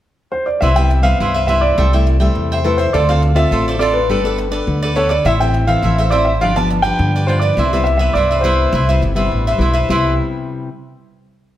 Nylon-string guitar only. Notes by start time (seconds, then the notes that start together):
0.62 C3 G3 B3 E4
0.78 G3 B3 E4
1.03 G3 B3
1.19 G2
1.48 G3 B3 E4
1.77 C3 G3 A3 E4
1.94 G3 A3 E4
2.20 G3 A3 E4
2.36 C3
2.64 G3 A3 E4
2.93 D3 C4 F4 A4
3.09 C4 F4 A4
3.35 C4 F4 A4
3.51 A2
3.79 C4 F4 A4
4.10 G3 B3 D4 A4
4.24 B3 D4 A4
4.51 B3 D4 A4
4.67 D3
4.96 B3 D4 A4
5.25 A2 E3 C4 E4
5.41 E3 C4 E4
5.67 E3 C4
5.84 E3
6.12 E3 C4 E4
6.42 G2 F3 B3 D4
6.57 F3 B3 D4
6.84 F3 B3 D4
7.00 D3
7.28 F3 B3 D4
7.58 C3 G3 B3 E4
7.73 G3 B3 E4
8.00 G3 B3 E4
8.15 G2
8.44 G3 B3 E4
8.73 C3
8.88 G3 B3 E4
9.15 G3 B3 E4
9.30 G2
9.58 G3 B3 E4
9.88 C3 G3 B3 E4